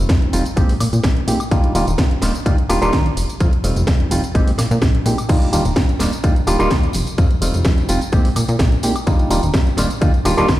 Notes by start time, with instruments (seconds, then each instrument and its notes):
Already playing: reed electric piano G3 A3 C4 D#4 F4
0.09 analog synth bass F2, kick, snare, closed hi-hat, tambourine
0.22 closed hi-hat
0.33 analog synth bass F1, reed electric piano G3 A3 C4 D#4 F4, open hi-hat, tambourine
0.46 closed hi-hat, tambourine
0.56 analog synth bass A#1, reed electric piano G#3 A#3 C4 D#4 G4, kick, closed hi-hat, tambourine
0.69 open hi-hat
0.80 analog synth bass A#2, open hi-hat, tambourine, high woodblock
0.93 analog synth bass A#2, closed hi-hat, tambourine
1.04 analog synth bass A#1, kick, snare, closed hi-hat, tambourine
1.17 closed hi-hat
1.27 analog synth bass A#2, reed electric piano G#3 A#3 C4 D#4 G4, open hi-hat, tambourine
1.40 closed hi-hat, tambourine, high woodblock
1.51 analog synth bass D#2, reed electric piano G3 A#3 D4 D#4 F4, kick, closed hi-hat, tambourine
1.64 closed hi-hat
1.75 analog synth bass D#1, reed electric piano G3 A#3 D4 D#4 F4, open hi-hat, tambourine
1.87 analog synth bass D#1, closed hi-hat, tambourine
1.98 analog synth bass D#2, kick, snare, closed hi-hat, tambourine
2.11 closed hi-hat
2.22 analog synth bass D#1, reed electric piano G3 A#3 D4 D#4 F4, snare, open hi-hat, tambourine
2.35 closed hi-hat, tambourine
2.46 analog synth bass D#2, reed electric piano G3 A#3 D4 D#4 F4, kick, closed hi-hat, tambourine
2.58 closed hi-hat
2.69 analog synth bass D#1, reed electric piano G3 A#3 D4 D#4 F4, open hi-hat, tambourine, high woodblock
2.82 analog synth bass D#1, reed electric piano G3 A#3 D4 D#4 F4, closed hi-hat, tambourine
2.93 analog synth bass D#2, kick, snare, closed hi-hat, tambourine
3.06 closed hi-hat
3.16 analog synth bass F1, open hi-hat, tambourine
3.29 closed hi-hat, tambourine
3.40 analog synth bass F2, reed electric piano G3 A3 C4 D#4 F4, kick, closed hi-hat, tambourine
3.53 closed hi-hat
3.64 analog synth bass F1, reed electric piano G3 A3 C4 D#4 F4, open hi-hat, tambourine
3.76 analog synth bass F1, closed hi-hat, tambourine
3.87 analog synth bass F2, kick, snare, closed hi-hat, tambourine
4.00 closed hi-hat
4.11 analog synth bass F1, reed electric piano G3 A3 C4 D#4 F4, open hi-hat, tambourine
4.24 closed hi-hat, tambourine
4.35 analog synth bass A#1, reed electric piano G#3 A#3 C4 D#4 G4, kick, closed hi-hat, tambourine
4.47 open hi-hat
4.58 analog synth bass A#2, snare, open hi-hat, tambourine, high woodblock
4.71 analog synth bass A#2, closed hi-hat, tambourine
4.82 analog synth bass A#1, kick, snare, closed hi-hat, tambourine
4.95 closed hi-hat
5.06 analog synth bass A#2, reed electric piano G#3 A#3 C4 D#4 G4, open hi-hat, tambourine
5.18 closed hi-hat, tambourine, high woodblock
5.29 analog synth bass D#2, reed electric piano G3 A#3 D4 D#4 F4, kick, closed hi-hat, tambourine, crash
5.41 closed hi-hat, tambourine
5.52 analog synth bass D#1, reed electric piano G3 A#3 D4 D#4 F4, open hi-hat, tambourine
5.65 analog synth bass D#1, closed hi-hat, tambourine
5.76 analog synth bass D#2, kick, snare, closed hi-hat, tambourine
5.89 closed hi-hat, tambourine
6.00 analog synth bass D#1, reed electric piano G3 A#3 D4 D#4 F4, snare, open hi-hat, tambourine
6.13 closed hi-hat, tambourine
6.23 analog synth bass D#2, reed electric piano G3 A#3 D4 D#4 F4, kick, closed hi-hat, tambourine
6.36 closed hi-hat, tambourine
6.47 analog synth bass D#1, reed electric piano G3 A#3 D4 D#4 F4, open hi-hat, tambourine, high woodblock
6.59 analog synth bass D#1, reed electric piano G3 A#3 D4 D#4 F4, closed hi-hat, tambourine
6.70 analog synth bass D#2, kick, snare, closed hi-hat, tambourine
6.83 closed hi-hat, tambourine
6.93 analog synth bass F1, open hi-hat, tambourine
6.95 tambourine
7.07 closed hi-hat, tambourine
7.18 analog synth bass F2, reed electric piano G3 A3 C4 D#4 F4, kick, closed hi-hat, tambourine
7.30 closed hi-hat, tambourine
7.41 analog synth bass F1, reed electric piano G3 A3 C4 D#4 F4, open hi-hat, tambourine
7.53 analog synth bass F1, closed hi-hat, tambourine
7.64 analog synth bass F2, kick, snare, closed hi-hat, tambourine
7.77 closed hi-hat, tambourine
7.89 analog synth bass F1, reed electric piano G3 A3 C4 D#4 F4, open hi-hat, tambourine
8.01 closed hi-hat, tambourine
8.12 analog synth bass A#1, reed electric piano G#3 A#3 C4 D#4 G4, kick, closed hi-hat, tambourine
8.25 open hi-hat, tambourine
8.36 analog synth bass A#2, open hi-hat, tambourine, high woodblock
8.48 analog synth bass A#2, closed hi-hat, tambourine
8.59 analog synth bass A#1, kick, snare, closed hi-hat, tambourine
8.72 closed hi-hat, tambourine
8.83 analog synth bass A#2, reed electric piano G#3 A#3 C4 D#4 G4, open hi-hat, tambourine
8.96 closed hi-hat, tambourine, high woodblock
9.06 analog synth bass D#2, reed electric piano G3 A#3 D4 D#4 F4, kick, closed hi-hat, tambourine
9.19 closed hi-hat, tambourine
9.30 analog synth bass D#1, reed electric piano G3 A#3 D4 D#4 F4, open hi-hat, tambourine
9.43 analog synth bass D#1, closed hi-hat, tambourine
9.54 analog synth bass D#2, kick, snare, closed hi-hat, tambourine
9.67 closed hi-hat, tambourine
9.77 analog synth bass D#1, reed electric piano G3 A#3 D4 D#4 F4, snare, open hi-hat, tambourine
9.90 closed hi-hat, tambourine
10.01 analog synth bass D#2, reed electric piano G3 A#3 D4 D#4 F4, kick, closed hi-hat, tambourine
10.14 closed hi-hat, tambourine
10.25 analog synth bass D#1, reed electric piano G3 A#3 D4 D#4 F4, open hi-hat, tambourine, high woodblock
10.37 analog synth bass D#1, reed electric piano G3 A#3 D4 D#4 F4, closed hi-hat, tambourine
10.48 analog synth bass D#2, kick, snare, closed hi-hat, tambourine